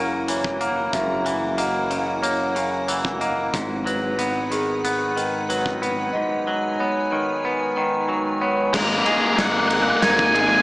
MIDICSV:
0, 0, Header, 1, 8, 480
1, 0, Start_track
1, 0, Key_signature, 5, "minor"
1, 0, Tempo, 650054
1, 686, Time_signature, 4, 2, 24, 8
1, 7843, End_track
2, 0, Start_track
2, 0, Title_t, "Lead electric guitar"
2, 0, Program_c, 0, 29
2, 6448, Note_on_c, 0, 82, 89
2, 6497, Note_off_c, 0, 82, 0
2, 6500, Note_on_c, 0, 82, 69
2, 6553, Note_off_c, 0, 82, 0
2, 6556, Note_on_c, 0, 82, 79
2, 6610, Note_off_c, 0, 82, 0
2, 6613, Note_on_c, 0, 82, 75
2, 6657, Note_off_c, 0, 82, 0
2, 6660, Note_on_c, 0, 82, 86
2, 6715, Note_off_c, 0, 82, 0
2, 6727, Note_on_c, 0, 82, 76
2, 6775, Note_off_c, 0, 82, 0
2, 6778, Note_on_c, 0, 82, 83
2, 6833, Note_off_c, 0, 82, 0
2, 6837, Note_on_c, 0, 82, 73
2, 6889, Note_off_c, 0, 82, 0
2, 6891, Note_on_c, 0, 82, 78
2, 6920, Note_on_c, 0, 78, 75
2, 6946, Note_off_c, 0, 82, 0
2, 6973, Note_off_c, 0, 78, 0
2, 6976, Note_on_c, 0, 78, 54
2, 7028, Note_off_c, 0, 78, 0
2, 7031, Note_on_c, 0, 78, 70
2, 7082, Note_off_c, 0, 78, 0
2, 7085, Note_on_c, 0, 78, 59
2, 7140, Note_off_c, 0, 78, 0
2, 7146, Note_on_c, 0, 78, 67
2, 7190, Note_off_c, 0, 78, 0
2, 7193, Note_on_c, 0, 78, 61
2, 7249, Note_off_c, 0, 78, 0
2, 7256, Note_on_c, 0, 78, 67
2, 7308, Note_off_c, 0, 78, 0
2, 7311, Note_on_c, 0, 78, 56
2, 7356, Note_off_c, 0, 78, 0
2, 7359, Note_on_c, 0, 78, 59
2, 7400, Note_off_c, 0, 78, 0
2, 7403, Note_on_c, 0, 80, 81
2, 7457, Note_off_c, 0, 80, 0
2, 7460, Note_on_c, 0, 80, 55
2, 7506, Note_off_c, 0, 80, 0
2, 7509, Note_on_c, 0, 80, 66
2, 7564, Note_off_c, 0, 80, 0
2, 7571, Note_on_c, 0, 80, 60
2, 7623, Note_off_c, 0, 80, 0
2, 7626, Note_on_c, 0, 80, 76
2, 7671, Note_off_c, 0, 80, 0
2, 7674, Note_on_c, 0, 80, 65
2, 7729, Note_off_c, 0, 80, 0
2, 7735, Note_on_c, 0, 80, 67
2, 7785, Note_off_c, 0, 80, 0
2, 7788, Note_on_c, 0, 80, 58
2, 7843, Note_off_c, 0, 80, 0
2, 7843, End_track
3, 0, Start_track
3, 0, Title_t, "Vibraphone"
3, 0, Program_c, 1, 11
3, 203, Note_on_c, 1, 73, 51
3, 679, Note_on_c, 1, 76, 61
3, 685, Note_off_c, 1, 73, 0
3, 1160, Note_on_c, 1, 75, 54
3, 1163, Note_off_c, 1, 76, 0
3, 1635, Note_on_c, 1, 73, 55
3, 1645, Note_off_c, 1, 75, 0
3, 2123, Note_off_c, 1, 73, 0
3, 2359, Note_on_c, 1, 75, 52
3, 2605, Note_off_c, 1, 75, 0
3, 2850, Note_on_c, 1, 71, 50
3, 3330, Note_on_c, 1, 68, 54
3, 3331, Note_off_c, 1, 71, 0
3, 3811, Note_off_c, 1, 68, 0
3, 4044, Note_on_c, 1, 71, 51
3, 4525, Note_on_c, 1, 75, 66
3, 4529, Note_off_c, 1, 71, 0
3, 5007, Note_on_c, 1, 73, 55
3, 5009, Note_off_c, 1, 75, 0
3, 5490, Note_off_c, 1, 73, 0
3, 5495, Note_on_c, 1, 71, 64
3, 5974, Note_off_c, 1, 71, 0
3, 6205, Note_on_c, 1, 73, 57
3, 6448, Note_off_c, 1, 73, 0
3, 6685, Note_on_c, 1, 75, 62
3, 7156, Note_on_c, 1, 70, 64
3, 7167, Note_off_c, 1, 75, 0
3, 7641, Note_off_c, 1, 70, 0
3, 7843, End_track
4, 0, Start_track
4, 0, Title_t, "Ambient pad"
4, 0, Program_c, 2, 92
4, 0, Note_on_c, 2, 54, 56
4, 0, Note_on_c, 2, 64, 55
4, 0, Note_on_c, 2, 70, 54
4, 0, Note_on_c, 2, 78, 67
4, 662, Note_off_c, 2, 78, 0
4, 689, Note_on_c, 2, 78, 66
4, 2577, Note_off_c, 2, 70, 0
4, 2578, Note_off_c, 2, 54, 0
4, 2578, Note_off_c, 2, 64, 0
4, 2593, Note_off_c, 2, 78, 0
4, 2607, Note_on_c, 2, 71, 56
4, 2610, Note_on_c, 2, 56, 62
4, 2612, Note_on_c, 2, 78, 68
4, 2613, Note_on_c, 2, 63, 59
4, 4515, Note_off_c, 2, 78, 0
4, 4524, Note_on_c, 2, 80, 71
4, 6421, Note_off_c, 2, 71, 0
4, 6422, Note_off_c, 2, 56, 0
4, 6423, Note_off_c, 2, 63, 0
4, 6428, Note_off_c, 2, 80, 0
4, 6448, Note_on_c, 2, 70, 59
4, 6452, Note_on_c, 2, 63, 68
4, 6452, Note_on_c, 2, 68, 62
4, 6454, Note_on_c, 2, 80, 71
4, 7843, Note_off_c, 2, 63, 0
4, 7843, Note_off_c, 2, 68, 0
4, 7843, Note_off_c, 2, 70, 0
4, 7843, Note_off_c, 2, 80, 0
4, 7843, End_track
5, 0, Start_track
5, 0, Title_t, "Distorted electric guitar"
5, 0, Program_c, 3, 30
5, 6453, Note_on_c, 3, 56, 55
5, 6459, Note_on_c, 3, 58, 65
5, 6502, Note_off_c, 3, 56, 0
5, 6505, Note_on_c, 3, 56, 39
5, 6511, Note_off_c, 3, 58, 0
5, 6514, Note_on_c, 3, 58, 50
5, 6562, Note_off_c, 3, 56, 0
5, 6564, Note_off_c, 3, 58, 0
5, 6567, Note_on_c, 3, 56, 44
5, 6567, Note_on_c, 3, 58, 58
5, 6620, Note_off_c, 3, 58, 0
5, 6622, Note_off_c, 3, 56, 0
5, 6623, Note_on_c, 3, 58, 48
5, 6625, Note_on_c, 3, 56, 41
5, 6675, Note_off_c, 3, 56, 0
5, 6678, Note_on_c, 3, 56, 51
5, 6679, Note_off_c, 3, 58, 0
5, 6685, Note_on_c, 3, 58, 56
5, 6728, Note_off_c, 3, 56, 0
5, 6731, Note_on_c, 3, 56, 42
5, 6738, Note_off_c, 3, 58, 0
5, 6741, Note_on_c, 3, 58, 49
5, 6787, Note_off_c, 3, 56, 0
5, 6788, Note_off_c, 3, 58, 0
5, 6791, Note_on_c, 3, 58, 59
5, 6794, Note_on_c, 3, 56, 49
5, 6833, Note_off_c, 3, 56, 0
5, 6836, Note_on_c, 3, 56, 44
5, 6845, Note_off_c, 3, 58, 0
5, 6848, Note_on_c, 3, 58, 52
5, 6892, Note_off_c, 3, 56, 0
5, 6899, Note_on_c, 3, 56, 51
5, 6904, Note_off_c, 3, 58, 0
5, 6916, Note_on_c, 3, 58, 62
5, 6956, Note_off_c, 3, 56, 0
5, 6958, Note_off_c, 3, 58, 0
5, 6960, Note_on_c, 3, 56, 47
5, 6961, Note_on_c, 3, 58, 53
5, 7012, Note_off_c, 3, 56, 0
5, 7015, Note_on_c, 3, 56, 53
5, 7017, Note_off_c, 3, 58, 0
5, 7021, Note_on_c, 3, 58, 65
5, 7068, Note_off_c, 3, 56, 0
5, 7071, Note_on_c, 3, 56, 47
5, 7077, Note_off_c, 3, 58, 0
5, 7080, Note_on_c, 3, 58, 50
5, 7123, Note_off_c, 3, 56, 0
5, 7126, Note_on_c, 3, 56, 49
5, 7127, Note_off_c, 3, 58, 0
5, 7130, Note_on_c, 3, 58, 61
5, 7182, Note_off_c, 3, 56, 0
5, 7185, Note_off_c, 3, 58, 0
5, 7186, Note_on_c, 3, 56, 46
5, 7188, Note_on_c, 3, 58, 55
5, 7237, Note_off_c, 3, 56, 0
5, 7240, Note_on_c, 3, 56, 52
5, 7241, Note_off_c, 3, 58, 0
5, 7244, Note_on_c, 3, 58, 61
5, 7296, Note_off_c, 3, 56, 0
5, 7296, Note_off_c, 3, 58, 0
5, 7298, Note_on_c, 3, 56, 45
5, 7298, Note_on_c, 3, 58, 54
5, 7346, Note_off_c, 3, 56, 0
5, 7349, Note_on_c, 3, 56, 55
5, 7355, Note_off_c, 3, 58, 0
5, 7362, Note_on_c, 3, 58, 59
5, 7405, Note_off_c, 3, 56, 0
5, 7408, Note_on_c, 3, 56, 49
5, 7414, Note_off_c, 3, 58, 0
5, 7417, Note_on_c, 3, 58, 55
5, 7463, Note_off_c, 3, 56, 0
5, 7466, Note_on_c, 3, 56, 50
5, 7467, Note_off_c, 3, 58, 0
5, 7470, Note_on_c, 3, 58, 66
5, 7517, Note_off_c, 3, 58, 0
5, 7519, Note_on_c, 3, 58, 56
5, 7521, Note_off_c, 3, 56, 0
5, 7524, Note_on_c, 3, 56, 43
5, 7571, Note_off_c, 3, 56, 0
5, 7574, Note_off_c, 3, 58, 0
5, 7574, Note_on_c, 3, 56, 53
5, 7577, Note_on_c, 3, 58, 61
5, 7631, Note_off_c, 3, 56, 0
5, 7633, Note_off_c, 3, 58, 0
5, 7641, Note_on_c, 3, 56, 42
5, 7642, Note_on_c, 3, 58, 56
5, 7683, Note_off_c, 3, 56, 0
5, 7685, Note_off_c, 3, 58, 0
5, 7686, Note_on_c, 3, 56, 55
5, 7688, Note_on_c, 3, 58, 62
5, 7738, Note_off_c, 3, 56, 0
5, 7741, Note_on_c, 3, 56, 44
5, 7744, Note_off_c, 3, 58, 0
5, 7748, Note_on_c, 3, 58, 57
5, 7797, Note_off_c, 3, 56, 0
5, 7804, Note_off_c, 3, 58, 0
5, 7806, Note_on_c, 3, 56, 48
5, 7814, Note_on_c, 3, 58, 62
5, 7843, Note_off_c, 3, 56, 0
5, 7843, Note_off_c, 3, 58, 0
5, 7843, End_track
6, 0, Start_track
6, 0, Title_t, "Clean electric guitar"
6, 0, Program_c, 4, 27
6, 0, Note_on_c, 4, 49, 44
6, 0, Note_on_c, 4, 52, 47
6, 0, Note_on_c, 4, 58, 45
6, 201, Note_off_c, 4, 52, 0
6, 210, Note_on_c, 4, 52, 47
6, 439, Note_off_c, 4, 58, 0
6, 448, Note_on_c, 4, 58, 43
6, 693, Note_on_c, 4, 42, 49
6, 921, Note_off_c, 4, 52, 0
6, 930, Note_on_c, 4, 52, 50
6, 1157, Note_off_c, 4, 58, 0
6, 1166, Note_on_c, 4, 58, 47
6, 1171, Note_off_c, 4, 49, 0
6, 1407, Note_on_c, 4, 49, 45
6, 1635, Note_off_c, 4, 58, 0
6, 1644, Note_on_c, 4, 58, 49
6, 1878, Note_off_c, 4, 49, 0
6, 1887, Note_on_c, 4, 49, 47
6, 1892, Note_off_c, 4, 42, 0
6, 2120, Note_off_c, 4, 52, 0
6, 2129, Note_on_c, 4, 52, 48
6, 2361, Note_off_c, 4, 58, 0
6, 2369, Note_on_c, 4, 58, 46
6, 2609, Note_off_c, 4, 49, 0
6, 2610, Note_off_c, 4, 52, 0
6, 2610, Note_off_c, 4, 58, 0
6, 2612, Note_on_c, 4, 44, 50
6, 2851, Note_on_c, 4, 54, 49
6, 3092, Note_on_c, 4, 59, 50
6, 3333, Note_on_c, 4, 51, 47
6, 3569, Note_off_c, 4, 59, 0
6, 3578, Note_on_c, 4, 59, 50
6, 3804, Note_off_c, 4, 51, 0
6, 3813, Note_on_c, 4, 51, 47
6, 4051, Note_off_c, 4, 54, 0
6, 4060, Note_on_c, 4, 54, 50
6, 4082, Note_off_c, 4, 44, 0
6, 4289, Note_off_c, 4, 59, 0
6, 4298, Note_on_c, 4, 59, 48
6, 4541, Note_on_c, 4, 44, 54
6, 4771, Note_off_c, 4, 54, 0
6, 4780, Note_on_c, 4, 54, 48
6, 5014, Note_off_c, 4, 51, 0
6, 5015, Note_off_c, 4, 59, 0
6, 5023, Note_on_c, 4, 59, 50
6, 5259, Note_on_c, 4, 51, 50
6, 5491, Note_off_c, 4, 59, 0
6, 5500, Note_on_c, 4, 59, 50
6, 5729, Note_off_c, 4, 51, 0
6, 5737, Note_off_c, 4, 44, 0
6, 5738, Note_on_c, 4, 51, 52
6, 5962, Note_off_c, 4, 54, 0
6, 5971, Note_on_c, 4, 54, 50
6, 6205, Note_off_c, 4, 59, 0
6, 6214, Note_on_c, 4, 59, 49
6, 6448, Note_off_c, 4, 51, 0
6, 6451, Note_off_c, 4, 54, 0
6, 6451, Note_on_c, 4, 56, 59
6, 6453, Note_off_c, 4, 59, 0
6, 6691, Note_on_c, 4, 68, 61
6, 6930, Note_on_c, 4, 63, 54
6, 7164, Note_on_c, 4, 58, 59
6, 7394, Note_off_c, 4, 63, 0
6, 7403, Note_on_c, 4, 63, 56
6, 7630, Note_off_c, 4, 68, 0
6, 7639, Note_on_c, 4, 68, 67
6, 7647, Note_off_c, 4, 56, 0
6, 7843, Note_off_c, 4, 58, 0
6, 7843, Note_off_c, 4, 63, 0
6, 7843, Note_off_c, 4, 68, 0
6, 7843, End_track
7, 0, Start_track
7, 0, Title_t, "Fingered electric bass"
7, 0, Program_c, 5, 33
7, 0, Note_on_c, 5, 30, 52
7, 658, Note_off_c, 5, 30, 0
7, 688, Note_on_c, 5, 30, 52
7, 2582, Note_off_c, 5, 30, 0
7, 2614, Note_on_c, 5, 32, 56
7, 4505, Note_off_c, 5, 32, 0
7, 6452, Note_on_c, 5, 32, 75
7, 6645, Note_off_c, 5, 32, 0
7, 6931, Note_on_c, 5, 32, 74
7, 7318, Note_off_c, 5, 32, 0
7, 7407, Note_on_c, 5, 32, 76
7, 7843, Note_off_c, 5, 32, 0
7, 7843, End_track
8, 0, Start_track
8, 0, Title_t, "Drums"
8, 210, Note_on_c, 9, 42, 58
8, 284, Note_off_c, 9, 42, 0
8, 328, Note_on_c, 9, 36, 58
8, 402, Note_off_c, 9, 36, 0
8, 449, Note_on_c, 9, 42, 42
8, 523, Note_off_c, 9, 42, 0
8, 688, Note_on_c, 9, 36, 68
8, 688, Note_on_c, 9, 42, 56
8, 762, Note_off_c, 9, 36, 0
8, 762, Note_off_c, 9, 42, 0
8, 929, Note_on_c, 9, 42, 43
8, 1003, Note_off_c, 9, 42, 0
8, 1167, Note_on_c, 9, 42, 55
8, 1241, Note_off_c, 9, 42, 0
8, 1409, Note_on_c, 9, 42, 43
8, 1483, Note_off_c, 9, 42, 0
8, 1650, Note_on_c, 9, 42, 57
8, 1724, Note_off_c, 9, 42, 0
8, 1891, Note_on_c, 9, 42, 39
8, 1965, Note_off_c, 9, 42, 0
8, 2130, Note_on_c, 9, 42, 55
8, 2204, Note_off_c, 9, 42, 0
8, 2250, Note_on_c, 9, 36, 61
8, 2324, Note_off_c, 9, 36, 0
8, 2371, Note_on_c, 9, 42, 39
8, 2445, Note_off_c, 9, 42, 0
8, 2612, Note_on_c, 9, 36, 73
8, 2613, Note_on_c, 9, 42, 55
8, 2685, Note_off_c, 9, 36, 0
8, 2687, Note_off_c, 9, 42, 0
8, 2858, Note_on_c, 9, 42, 37
8, 2931, Note_off_c, 9, 42, 0
8, 3092, Note_on_c, 9, 42, 53
8, 3166, Note_off_c, 9, 42, 0
8, 3335, Note_on_c, 9, 42, 39
8, 3409, Note_off_c, 9, 42, 0
8, 3579, Note_on_c, 9, 42, 53
8, 3652, Note_off_c, 9, 42, 0
8, 3821, Note_on_c, 9, 42, 39
8, 3895, Note_off_c, 9, 42, 0
8, 4061, Note_on_c, 9, 42, 54
8, 4135, Note_off_c, 9, 42, 0
8, 4177, Note_on_c, 9, 36, 61
8, 4251, Note_off_c, 9, 36, 0
8, 4304, Note_on_c, 9, 42, 42
8, 4378, Note_off_c, 9, 42, 0
8, 6453, Note_on_c, 9, 36, 93
8, 6454, Note_on_c, 9, 38, 41
8, 6454, Note_on_c, 9, 49, 96
8, 6526, Note_off_c, 9, 36, 0
8, 6528, Note_off_c, 9, 38, 0
8, 6528, Note_off_c, 9, 49, 0
8, 6689, Note_on_c, 9, 51, 54
8, 6762, Note_off_c, 9, 51, 0
8, 6929, Note_on_c, 9, 38, 44
8, 6929, Note_on_c, 9, 51, 75
8, 7003, Note_off_c, 9, 38, 0
8, 7003, Note_off_c, 9, 51, 0
8, 7165, Note_on_c, 9, 51, 57
8, 7239, Note_off_c, 9, 51, 0
8, 7402, Note_on_c, 9, 38, 49
8, 7402, Note_on_c, 9, 51, 84
8, 7475, Note_off_c, 9, 38, 0
8, 7475, Note_off_c, 9, 51, 0
8, 7525, Note_on_c, 9, 36, 79
8, 7599, Note_off_c, 9, 36, 0
8, 7645, Note_on_c, 9, 51, 59
8, 7719, Note_off_c, 9, 51, 0
8, 7843, End_track
0, 0, End_of_file